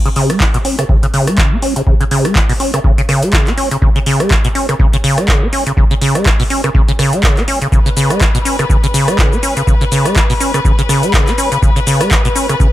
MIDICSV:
0, 0, Header, 1, 4, 480
1, 0, Start_track
1, 0, Tempo, 487805
1, 1838, Time_signature, 4, 2, 24, 8
1, 12520, End_track
2, 0, Start_track
2, 0, Title_t, "String section"
2, 0, Program_c, 0, 48
2, 7598, Note_on_c, 0, 71, 79
2, 12520, Note_off_c, 0, 71, 0
2, 12520, End_track
3, 0, Start_track
3, 0, Title_t, "Acid bass"
3, 0, Program_c, 1, 38
3, 53, Note_on_c, 1, 49, 104
3, 88, Note_off_c, 1, 49, 0
3, 158, Note_on_c, 1, 49, 97
3, 294, Note_on_c, 1, 56, 101
3, 309, Note_off_c, 1, 49, 0
3, 398, Note_on_c, 1, 49, 99
3, 413, Note_off_c, 1, 56, 0
3, 443, Note_off_c, 1, 49, 0
3, 534, Note_on_c, 1, 47, 96
3, 568, Note_off_c, 1, 47, 0
3, 638, Note_on_c, 1, 61, 75
3, 750, Note_off_c, 1, 61, 0
3, 773, Note_on_c, 1, 49, 75
3, 831, Note_off_c, 1, 49, 0
3, 878, Note_on_c, 1, 49, 79
3, 952, Note_off_c, 1, 49, 0
3, 1013, Note_on_c, 1, 49, 101
3, 1048, Note_off_c, 1, 49, 0
3, 1117, Note_on_c, 1, 49, 102
3, 1253, Note_on_c, 1, 56, 102
3, 1268, Note_off_c, 1, 49, 0
3, 1358, Note_on_c, 1, 49, 97
3, 1372, Note_off_c, 1, 56, 0
3, 1494, Note_on_c, 1, 61, 99
3, 1508, Note_off_c, 1, 49, 0
3, 1551, Note_off_c, 1, 61, 0
3, 1598, Note_on_c, 1, 61, 82
3, 1710, Note_off_c, 1, 61, 0
3, 1733, Note_on_c, 1, 49, 77
3, 1791, Note_off_c, 1, 49, 0
3, 1838, Note_on_c, 1, 49, 78
3, 1912, Note_off_c, 1, 49, 0
3, 1974, Note_on_c, 1, 49, 102
3, 2008, Note_off_c, 1, 49, 0
3, 2078, Note_on_c, 1, 49, 100
3, 2213, Note_on_c, 1, 56, 98
3, 2228, Note_off_c, 1, 49, 0
3, 2317, Note_on_c, 1, 49, 98
3, 2332, Note_off_c, 1, 56, 0
3, 2362, Note_off_c, 1, 49, 0
3, 2453, Note_on_c, 1, 47, 98
3, 2487, Note_off_c, 1, 47, 0
3, 2557, Note_on_c, 1, 61, 77
3, 2669, Note_off_c, 1, 61, 0
3, 2693, Note_on_c, 1, 49, 77
3, 2751, Note_off_c, 1, 49, 0
3, 2797, Note_on_c, 1, 49, 81
3, 2872, Note_off_c, 1, 49, 0
3, 2933, Note_on_c, 1, 49, 99
3, 2968, Note_off_c, 1, 49, 0
3, 3038, Note_on_c, 1, 49, 99
3, 3173, Note_on_c, 1, 56, 99
3, 3188, Note_off_c, 1, 49, 0
3, 3278, Note_on_c, 1, 49, 99
3, 3292, Note_off_c, 1, 56, 0
3, 3414, Note_on_c, 1, 61, 101
3, 3429, Note_off_c, 1, 49, 0
3, 3471, Note_off_c, 1, 61, 0
3, 3518, Note_on_c, 1, 61, 78
3, 3630, Note_off_c, 1, 61, 0
3, 3654, Note_on_c, 1, 49, 74
3, 3711, Note_off_c, 1, 49, 0
3, 3758, Note_on_c, 1, 49, 82
3, 3833, Note_off_c, 1, 49, 0
3, 3894, Note_on_c, 1, 49, 104
3, 3928, Note_off_c, 1, 49, 0
3, 3998, Note_on_c, 1, 49, 99
3, 4134, Note_on_c, 1, 56, 99
3, 4149, Note_off_c, 1, 49, 0
3, 4238, Note_on_c, 1, 49, 103
3, 4253, Note_off_c, 1, 56, 0
3, 4283, Note_off_c, 1, 49, 0
3, 4374, Note_on_c, 1, 47, 98
3, 4408, Note_off_c, 1, 47, 0
3, 4478, Note_on_c, 1, 61, 74
3, 4590, Note_off_c, 1, 61, 0
3, 4614, Note_on_c, 1, 49, 76
3, 4671, Note_off_c, 1, 49, 0
3, 4719, Note_on_c, 1, 49, 86
3, 4793, Note_off_c, 1, 49, 0
3, 4854, Note_on_c, 1, 49, 101
3, 4888, Note_off_c, 1, 49, 0
3, 4958, Note_on_c, 1, 49, 99
3, 5094, Note_on_c, 1, 56, 98
3, 5109, Note_off_c, 1, 49, 0
3, 5198, Note_on_c, 1, 49, 99
3, 5213, Note_off_c, 1, 56, 0
3, 5334, Note_on_c, 1, 61, 96
3, 5349, Note_off_c, 1, 49, 0
3, 5391, Note_off_c, 1, 61, 0
3, 5438, Note_on_c, 1, 61, 79
3, 5550, Note_off_c, 1, 61, 0
3, 5574, Note_on_c, 1, 49, 76
3, 5631, Note_off_c, 1, 49, 0
3, 5679, Note_on_c, 1, 49, 84
3, 5753, Note_off_c, 1, 49, 0
3, 5814, Note_on_c, 1, 49, 100
3, 5848, Note_off_c, 1, 49, 0
3, 5918, Note_on_c, 1, 49, 99
3, 6054, Note_on_c, 1, 56, 99
3, 6069, Note_off_c, 1, 49, 0
3, 6159, Note_on_c, 1, 49, 100
3, 6173, Note_off_c, 1, 56, 0
3, 6203, Note_off_c, 1, 49, 0
3, 6294, Note_on_c, 1, 47, 99
3, 6328, Note_off_c, 1, 47, 0
3, 6399, Note_on_c, 1, 61, 78
3, 6510, Note_off_c, 1, 61, 0
3, 6535, Note_on_c, 1, 49, 76
3, 6591, Note_off_c, 1, 49, 0
3, 6639, Note_on_c, 1, 49, 84
3, 6713, Note_off_c, 1, 49, 0
3, 6774, Note_on_c, 1, 49, 105
3, 6808, Note_off_c, 1, 49, 0
3, 6879, Note_on_c, 1, 49, 96
3, 7014, Note_on_c, 1, 56, 104
3, 7029, Note_off_c, 1, 49, 0
3, 7118, Note_on_c, 1, 49, 99
3, 7133, Note_off_c, 1, 56, 0
3, 7254, Note_on_c, 1, 61, 102
3, 7269, Note_off_c, 1, 49, 0
3, 7311, Note_off_c, 1, 61, 0
3, 7359, Note_on_c, 1, 61, 82
3, 7470, Note_off_c, 1, 61, 0
3, 7494, Note_on_c, 1, 49, 76
3, 7551, Note_off_c, 1, 49, 0
3, 7598, Note_on_c, 1, 49, 84
3, 7673, Note_off_c, 1, 49, 0
3, 7734, Note_on_c, 1, 49, 100
3, 7768, Note_off_c, 1, 49, 0
3, 7838, Note_on_c, 1, 49, 97
3, 7974, Note_on_c, 1, 56, 99
3, 7988, Note_off_c, 1, 49, 0
3, 8078, Note_on_c, 1, 49, 102
3, 8093, Note_off_c, 1, 56, 0
3, 8123, Note_off_c, 1, 49, 0
3, 8213, Note_on_c, 1, 47, 103
3, 8248, Note_off_c, 1, 47, 0
3, 8317, Note_on_c, 1, 61, 74
3, 8429, Note_off_c, 1, 61, 0
3, 8454, Note_on_c, 1, 49, 76
3, 8511, Note_off_c, 1, 49, 0
3, 8557, Note_on_c, 1, 49, 79
3, 8632, Note_off_c, 1, 49, 0
3, 8693, Note_on_c, 1, 49, 104
3, 8728, Note_off_c, 1, 49, 0
3, 8798, Note_on_c, 1, 49, 100
3, 8934, Note_on_c, 1, 56, 102
3, 8948, Note_off_c, 1, 49, 0
3, 9038, Note_on_c, 1, 49, 97
3, 9053, Note_off_c, 1, 56, 0
3, 9174, Note_on_c, 1, 61, 98
3, 9188, Note_off_c, 1, 49, 0
3, 9231, Note_off_c, 1, 61, 0
3, 9278, Note_on_c, 1, 61, 82
3, 9390, Note_off_c, 1, 61, 0
3, 9414, Note_on_c, 1, 49, 75
3, 9471, Note_off_c, 1, 49, 0
3, 9518, Note_on_c, 1, 49, 83
3, 9592, Note_off_c, 1, 49, 0
3, 9653, Note_on_c, 1, 49, 102
3, 9688, Note_off_c, 1, 49, 0
3, 9758, Note_on_c, 1, 49, 104
3, 9893, Note_on_c, 1, 56, 97
3, 9908, Note_off_c, 1, 49, 0
3, 9998, Note_on_c, 1, 49, 98
3, 10012, Note_off_c, 1, 56, 0
3, 10043, Note_off_c, 1, 49, 0
3, 10133, Note_on_c, 1, 47, 97
3, 10168, Note_off_c, 1, 47, 0
3, 10238, Note_on_c, 1, 61, 77
3, 10350, Note_off_c, 1, 61, 0
3, 10374, Note_on_c, 1, 49, 73
3, 10431, Note_off_c, 1, 49, 0
3, 10478, Note_on_c, 1, 49, 85
3, 10553, Note_off_c, 1, 49, 0
3, 10613, Note_on_c, 1, 49, 105
3, 10648, Note_off_c, 1, 49, 0
3, 10717, Note_on_c, 1, 49, 99
3, 10853, Note_on_c, 1, 56, 98
3, 10868, Note_off_c, 1, 49, 0
3, 10958, Note_on_c, 1, 49, 98
3, 10972, Note_off_c, 1, 56, 0
3, 11094, Note_on_c, 1, 61, 102
3, 11108, Note_off_c, 1, 49, 0
3, 11151, Note_off_c, 1, 61, 0
3, 11198, Note_on_c, 1, 61, 81
3, 11310, Note_off_c, 1, 61, 0
3, 11333, Note_on_c, 1, 49, 75
3, 11391, Note_off_c, 1, 49, 0
3, 11438, Note_on_c, 1, 49, 82
3, 11512, Note_off_c, 1, 49, 0
3, 11573, Note_on_c, 1, 49, 104
3, 11608, Note_off_c, 1, 49, 0
3, 11677, Note_on_c, 1, 49, 97
3, 11813, Note_on_c, 1, 56, 102
3, 11828, Note_off_c, 1, 49, 0
3, 11917, Note_on_c, 1, 49, 102
3, 11932, Note_off_c, 1, 56, 0
3, 11962, Note_off_c, 1, 49, 0
3, 12053, Note_on_c, 1, 47, 95
3, 12088, Note_off_c, 1, 47, 0
3, 12157, Note_on_c, 1, 61, 76
3, 12269, Note_off_c, 1, 61, 0
3, 12293, Note_on_c, 1, 49, 77
3, 12351, Note_off_c, 1, 49, 0
3, 12398, Note_on_c, 1, 49, 82
3, 12472, Note_off_c, 1, 49, 0
3, 12520, End_track
4, 0, Start_track
4, 0, Title_t, "Drums"
4, 54, Note_on_c, 9, 42, 36
4, 152, Note_off_c, 9, 42, 0
4, 158, Note_on_c, 9, 46, 101
4, 256, Note_off_c, 9, 46, 0
4, 294, Note_on_c, 9, 37, 70
4, 294, Note_on_c, 9, 42, 62
4, 392, Note_off_c, 9, 37, 0
4, 392, Note_off_c, 9, 42, 0
4, 398, Note_on_c, 9, 36, 118
4, 398, Note_on_c, 9, 39, 116
4, 496, Note_off_c, 9, 36, 0
4, 497, Note_off_c, 9, 39, 0
4, 534, Note_on_c, 9, 42, 52
4, 632, Note_off_c, 9, 42, 0
4, 638, Note_on_c, 9, 46, 106
4, 737, Note_off_c, 9, 46, 0
4, 774, Note_on_c, 9, 37, 72
4, 774, Note_on_c, 9, 42, 66
4, 873, Note_off_c, 9, 37, 0
4, 873, Note_off_c, 9, 42, 0
4, 878, Note_on_c, 9, 36, 119
4, 976, Note_off_c, 9, 36, 0
4, 1014, Note_on_c, 9, 42, 51
4, 1112, Note_off_c, 9, 42, 0
4, 1118, Note_on_c, 9, 46, 101
4, 1217, Note_off_c, 9, 46, 0
4, 1254, Note_on_c, 9, 37, 74
4, 1254, Note_on_c, 9, 42, 67
4, 1352, Note_off_c, 9, 37, 0
4, 1352, Note_off_c, 9, 42, 0
4, 1357, Note_on_c, 9, 36, 124
4, 1358, Note_on_c, 9, 39, 115
4, 1456, Note_off_c, 9, 36, 0
4, 1457, Note_off_c, 9, 39, 0
4, 1598, Note_on_c, 9, 46, 104
4, 1697, Note_off_c, 9, 46, 0
4, 1733, Note_on_c, 9, 42, 68
4, 1832, Note_off_c, 9, 42, 0
4, 1837, Note_on_c, 9, 36, 116
4, 1936, Note_off_c, 9, 36, 0
4, 1974, Note_on_c, 9, 42, 36
4, 2072, Note_off_c, 9, 42, 0
4, 2078, Note_on_c, 9, 46, 107
4, 2177, Note_off_c, 9, 46, 0
4, 2214, Note_on_c, 9, 37, 72
4, 2214, Note_on_c, 9, 42, 62
4, 2312, Note_off_c, 9, 37, 0
4, 2312, Note_off_c, 9, 42, 0
4, 2318, Note_on_c, 9, 36, 123
4, 2318, Note_on_c, 9, 39, 114
4, 2416, Note_off_c, 9, 36, 0
4, 2417, Note_off_c, 9, 39, 0
4, 2454, Note_on_c, 9, 46, 61
4, 2552, Note_off_c, 9, 46, 0
4, 2558, Note_on_c, 9, 46, 108
4, 2657, Note_off_c, 9, 46, 0
4, 2694, Note_on_c, 9, 37, 76
4, 2694, Note_on_c, 9, 42, 64
4, 2792, Note_off_c, 9, 37, 0
4, 2792, Note_off_c, 9, 42, 0
4, 2798, Note_on_c, 9, 36, 122
4, 2896, Note_off_c, 9, 36, 0
4, 2934, Note_on_c, 9, 42, 50
4, 3032, Note_off_c, 9, 42, 0
4, 3038, Note_on_c, 9, 37, 59
4, 3038, Note_on_c, 9, 46, 107
4, 3137, Note_off_c, 9, 37, 0
4, 3137, Note_off_c, 9, 46, 0
4, 3174, Note_on_c, 9, 42, 65
4, 3272, Note_off_c, 9, 42, 0
4, 3278, Note_on_c, 9, 36, 127
4, 3278, Note_on_c, 9, 39, 127
4, 3376, Note_off_c, 9, 36, 0
4, 3376, Note_off_c, 9, 39, 0
4, 3414, Note_on_c, 9, 39, 39
4, 3414, Note_on_c, 9, 42, 38
4, 3512, Note_off_c, 9, 39, 0
4, 3512, Note_off_c, 9, 42, 0
4, 3518, Note_on_c, 9, 46, 107
4, 3617, Note_off_c, 9, 46, 0
4, 3654, Note_on_c, 9, 42, 67
4, 3752, Note_off_c, 9, 42, 0
4, 3758, Note_on_c, 9, 36, 120
4, 3856, Note_off_c, 9, 36, 0
4, 3894, Note_on_c, 9, 42, 34
4, 3992, Note_off_c, 9, 42, 0
4, 3998, Note_on_c, 9, 46, 104
4, 4097, Note_off_c, 9, 46, 0
4, 4134, Note_on_c, 9, 37, 77
4, 4134, Note_on_c, 9, 42, 59
4, 4232, Note_off_c, 9, 37, 0
4, 4232, Note_off_c, 9, 42, 0
4, 4238, Note_on_c, 9, 36, 126
4, 4239, Note_on_c, 9, 39, 112
4, 4336, Note_off_c, 9, 36, 0
4, 4337, Note_off_c, 9, 39, 0
4, 4374, Note_on_c, 9, 42, 52
4, 4473, Note_off_c, 9, 42, 0
4, 4479, Note_on_c, 9, 46, 113
4, 4577, Note_off_c, 9, 46, 0
4, 4615, Note_on_c, 9, 37, 76
4, 4615, Note_on_c, 9, 42, 61
4, 4713, Note_off_c, 9, 37, 0
4, 4713, Note_off_c, 9, 42, 0
4, 4718, Note_on_c, 9, 36, 121
4, 4817, Note_off_c, 9, 36, 0
4, 4855, Note_on_c, 9, 42, 48
4, 4953, Note_off_c, 9, 42, 0
4, 4959, Note_on_c, 9, 46, 106
4, 5057, Note_off_c, 9, 46, 0
4, 5095, Note_on_c, 9, 37, 78
4, 5095, Note_on_c, 9, 42, 63
4, 5193, Note_off_c, 9, 37, 0
4, 5193, Note_off_c, 9, 42, 0
4, 5198, Note_on_c, 9, 36, 127
4, 5199, Note_on_c, 9, 39, 116
4, 5297, Note_off_c, 9, 36, 0
4, 5298, Note_off_c, 9, 39, 0
4, 5439, Note_on_c, 9, 46, 112
4, 5537, Note_off_c, 9, 46, 0
4, 5574, Note_on_c, 9, 42, 66
4, 5673, Note_off_c, 9, 42, 0
4, 5678, Note_on_c, 9, 36, 120
4, 5776, Note_off_c, 9, 36, 0
4, 5814, Note_on_c, 9, 42, 33
4, 5913, Note_off_c, 9, 42, 0
4, 5919, Note_on_c, 9, 46, 104
4, 6017, Note_off_c, 9, 46, 0
4, 6054, Note_on_c, 9, 37, 79
4, 6054, Note_on_c, 9, 42, 59
4, 6152, Note_off_c, 9, 37, 0
4, 6152, Note_off_c, 9, 42, 0
4, 6158, Note_on_c, 9, 36, 127
4, 6158, Note_on_c, 9, 39, 117
4, 6256, Note_off_c, 9, 36, 0
4, 6257, Note_off_c, 9, 39, 0
4, 6294, Note_on_c, 9, 46, 64
4, 6392, Note_off_c, 9, 46, 0
4, 6398, Note_on_c, 9, 46, 114
4, 6496, Note_off_c, 9, 46, 0
4, 6534, Note_on_c, 9, 37, 79
4, 6534, Note_on_c, 9, 42, 59
4, 6632, Note_off_c, 9, 37, 0
4, 6632, Note_off_c, 9, 42, 0
4, 6638, Note_on_c, 9, 36, 119
4, 6736, Note_off_c, 9, 36, 0
4, 6774, Note_on_c, 9, 42, 47
4, 6872, Note_off_c, 9, 42, 0
4, 6878, Note_on_c, 9, 37, 63
4, 6878, Note_on_c, 9, 46, 106
4, 6977, Note_off_c, 9, 37, 0
4, 6977, Note_off_c, 9, 46, 0
4, 7014, Note_on_c, 9, 42, 63
4, 7112, Note_off_c, 9, 42, 0
4, 7118, Note_on_c, 9, 36, 127
4, 7118, Note_on_c, 9, 39, 114
4, 7216, Note_off_c, 9, 36, 0
4, 7217, Note_off_c, 9, 39, 0
4, 7254, Note_on_c, 9, 39, 38
4, 7254, Note_on_c, 9, 42, 37
4, 7352, Note_off_c, 9, 42, 0
4, 7353, Note_off_c, 9, 39, 0
4, 7358, Note_on_c, 9, 46, 108
4, 7457, Note_off_c, 9, 46, 0
4, 7494, Note_on_c, 9, 42, 63
4, 7593, Note_off_c, 9, 42, 0
4, 7598, Note_on_c, 9, 36, 116
4, 7603, Note_on_c, 9, 69, 44
4, 7696, Note_off_c, 9, 36, 0
4, 7701, Note_off_c, 9, 69, 0
4, 7734, Note_on_c, 9, 42, 34
4, 7738, Note_on_c, 9, 69, 30
4, 7833, Note_off_c, 9, 42, 0
4, 7837, Note_off_c, 9, 69, 0
4, 7839, Note_on_c, 9, 46, 101
4, 7843, Note_on_c, 9, 69, 74
4, 7937, Note_off_c, 9, 46, 0
4, 7941, Note_off_c, 9, 69, 0
4, 7974, Note_on_c, 9, 37, 77
4, 7974, Note_on_c, 9, 42, 60
4, 7978, Note_on_c, 9, 69, 32
4, 8073, Note_off_c, 9, 37, 0
4, 8073, Note_off_c, 9, 42, 0
4, 8077, Note_off_c, 9, 69, 0
4, 8078, Note_on_c, 9, 36, 116
4, 8079, Note_on_c, 9, 39, 109
4, 8082, Note_on_c, 9, 69, 43
4, 8176, Note_off_c, 9, 36, 0
4, 8177, Note_off_c, 9, 39, 0
4, 8181, Note_off_c, 9, 69, 0
4, 8214, Note_on_c, 9, 42, 52
4, 8218, Note_on_c, 9, 69, 31
4, 8313, Note_off_c, 9, 42, 0
4, 8317, Note_off_c, 9, 69, 0
4, 8319, Note_on_c, 9, 46, 108
4, 8323, Note_on_c, 9, 69, 76
4, 8417, Note_off_c, 9, 46, 0
4, 8421, Note_off_c, 9, 69, 0
4, 8454, Note_on_c, 9, 37, 80
4, 8454, Note_on_c, 9, 42, 61
4, 8458, Note_on_c, 9, 69, 32
4, 8553, Note_off_c, 9, 37, 0
4, 8553, Note_off_c, 9, 42, 0
4, 8557, Note_off_c, 9, 69, 0
4, 8558, Note_on_c, 9, 36, 116
4, 8563, Note_on_c, 9, 69, 45
4, 8656, Note_off_c, 9, 36, 0
4, 8661, Note_off_c, 9, 69, 0
4, 8695, Note_on_c, 9, 42, 48
4, 8699, Note_on_c, 9, 69, 29
4, 8793, Note_off_c, 9, 42, 0
4, 8797, Note_off_c, 9, 69, 0
4, 8799, Note_on_c, 9, 46, 103
4, 8803, Note_on_c, 9, 69, 76
4, 8897, Note_off_c, 9, 46, 0
4, 8901, Note_off_c, 9, 69, 0
4, 8935, Note_on_c, 9, 37, 82
4, 8935, Note_on_c, 9, 42, 65
4, 8939, Note_on_c, 9, 69, 32
4, 9033, Note_off_c, 9, 37, 0
4, 9033, Note_off_c, 9, 42, 0
4, 9037, Note_off_c, 9, 69, 0
4, 9038, Note_on_c, 9, 36, 122
4, 9039, Note_on_c, 9, 39, 112
4, 9043, Note_on_c, 9, 69, 44
4, 9136, Note_off_c, 9, 36, 0
4, 9138, Note_off_c, 9, 39, 0
4, 9141, Note_off_c, 9, 69, 0
4, 9179, Note_on_c, 9, 69, 33
4, 9277, Note_off_c, 9, 69, 0
4, 9279, Note_on_c, 9, 46, 104
4, 9282, Note_on_c, 9, 69, 78
4, 9377, Note_off_c, 9, 46, 0
4, 9381, Note_off_c, 9, 69, 0
4, 9414, Note_on_c, 9, 42, 63
4, 9418, Note_on_c, 9, 69, 35
4, 9513, Note_off_c, 9, 42, 0
4, 9517, Note_off_c, 9, 69, 0
4, 9518, Note_on_c, 9, 36, 111
4, 9522, Note_on_c, 9, 69, 44
4, 9616, Note_off_c, 9, 36, 0
4, 9621, Note_off_c, 9, 69, 0
4, 9654, Note_on_c, 9, 42, 34
4, 9658, Note_on_c, 9, 69, 31
4, 9753, Note_off_c, 9, 42, 0
4, 9757, Note_off_c, 9, 69, 0
4, 9758, Note_on_c, 9, 46, 96
4, 9762, Note_on_c, 9, 69, 78
4, 9857, Note_off_c, 9, 46, 0
4, 9861, Note_off_c, 9, 69, 0
4, 9894, Note_on_c, 9, 37, 75
4, 9894, Note_on_c, 9, 42, 62
4, 9898, Note_on_c, 9, 69, 33
4, 9993, Note_off_c, 9, 37, 0
4, 9993, Note_off_c, 9, 42, 0
4, 9997, Note_off_c, 9, 69, 0
4, 9998, Note_on_c, 9, 36, 116
4, 9999, Note_on_c, 9, 39, 108
4, 10002, Note_on_c, 9, 69, 46
4, 10096, Note_off_c, 9, 36, 0
4, 10097, Note_off_c, 9, 39, 0
4, 10101, Note_off_c, 9, 69, 0
4, 10134, Note_on_c, 9, 46, 59
4, 10138, Note_on_c, 9, 69, 33
4, 10232, Note_off_c, 9, 46, 0
4, 10236, Note_off_c, 9, 69, 0
4, 10238, Note_on_c, 9, 46, 101
4, 10242, Note_on_c, 9, 69, 84
4, 10337, Note_off_c, 9, 46, 0
4, 10341, Note_off_c, 9, 69, 0
4, 10374, Note_on_c, 9, 37, 76
4, 10374, Note_on_c, 9, 42, 66
4, 10378, Note_on_c, 9, 69, 34
4, 10472, Note_off_c, 9, 37, 0
4, 10472, Note_off_c, 9, 42, 0
4, 10476, Note_off_c, 9, 69, 0
4, 10478, Note_on_c, 9, 36, 109
4, 10482, Note_on_c, 9, 69, 46
4, 10576, Note_off_c, 9, 36, 0
4, 10580, Note_off_c, 9, 69, 0
4, 10614, Note_on_c, 9, 42, 49
4, 10618, Note_on_c, 9, 69, 30
4, 10712, Note_off_c, 9, 42, 0
4, 10716, Note_off_c, 9, 69, 0
4, 10718, Note_on_c, 9, 37, 61
4, 10718, Note_on_c, 9, 46, 95
4, 10722, Note_on_c, 9, 69, 79
4, 10816, Note_off_c, 9, 37, 0
4, 10816, Note_off_c, 9, 46, 0
4, 10820, Note_off_c, 9, 69, 0
4, 10854, Note_on_c, 9, 42, 66
4, 10858, Note_on_c, 9, 69, 35
4, 10952, Note_off_c, 9, 42, 0
4, 10956, Note_off_c, 9, 69, 0
4, 10958, Note_on_c, 9, 36, 120
4, 10958, Note_on_c, 9, 39, 111
4, 10962, Note_on_c, 9, 69, 45
4, 11056, Note_off_c, 9, 36, 0
4, 11057, Note_off_c, 9, 39, 0
4, 11061, Note_off_c, 9, 69, 0
4, 11094, Note_on_c, 9, 39, 37
4, 11094, Note_on_c, 9, 42, 38
4, 11098, Note_on_c, 9, 69, 33
4, 11192, Note_off_c, 9, 39, 0
4, 11192, Note_off_c, 9, 42, 0
4, 11196, Note_off_c, 9, 69, 0
4, 11198, Note_on_c, 9, 46, 100
4, 11202, Note_on_c, 9, 69, 87
4, 11297, Note_off_c, 9, 46, 0
4, 11301, Note_off_c, 9, 69, 0
4, 11334, Note_on_c, 9, 42, 66
4, 11338, Note_on_c, 9, 69, 35
4, 11432, Note_off_c, 9, 42, 0
4, 11436, Note_off_c, 9, 69, 0
4, 11438, Note_on_c, 9, 36, 110
4, 11442, Note_on_c, 9, 69, 44
4, 11536, Note_off_c, 9, 36, 0
4, 11541, Note_off_c, 9, 69, 0
4, 11574, Note_on_c, 9, 42, 36
4, 11578, Note_on_c, 9, 69, 31
4, 11672, Note_off_c, 9, 42, 0
4, 11676, Note_off_c, 9, 69, 0
4, 11678, Note_on_c, 9, 46, 98
4, 11682, Note_on_c, 9, 69, 80
4, 11777, Note_off_c, 9, 46, 0
4, 11781, Note_off_c, 9, 69, 0
4, 11814, Note_on_c, 9, 37, 74
4, 11814, Note_on_c, 9, 42, 64
4, 11818, Note_on_c, 9, 69, 34
4, 11912, Note_off_c, 9, 37, 0
4, 11912, Note_off_c, 9, 42, 0
4, 11916, Note_off_c, 9, 69, 0
4, 11918, Note_on_c, 9, 36, 114
4, 11918, Note_on_c, 9, 39, 115
4, 11922, Note_on_c, 9, 69, 46
4, 12016, Note_off_c, 9, 36, 0
4, 12017, Note_off_c, 9, 39, 0
4, 12021, Note_off_c, 9, 69, 0
4, 12054, Note_on_c, 9, 42, 53
4, 12058, Note_on_c, 9, 69, 35
4, 12152, Note_off_c, 9, 42, 0
4, 12156, Note_off_c, 9, 69, 0
4, 12158, Note_on_c, 9, 46, 101
4, 12162, Note_on_c, 9, 69, 85
4, 12257, Note_off_c, 9, 46, 0
4, 12260, Note_off_c, 9, 69, 0
4, 12294, Note_on_c, 9, 37, 76
4, 12294, Note_on_c, 9, 42, 68
4, 12298, Note_on_c, 9, 69, 36
4, 12392, Note_off_c, 9, 37, 0
4, 12392, Note_off_c, 9, 42, 0
4, 12396, Note_off_c, 9, 69, 0
4, 12398, Note_on_c, 9, 36, 113
4, 12402, Note_on_c, 9, 69, 46
4, 12496, Note_off_c, 9, 36, 0
4, 12501, Note_off_c, 9, 69, 0
4, 12520, End_track
0, 0, End_of_file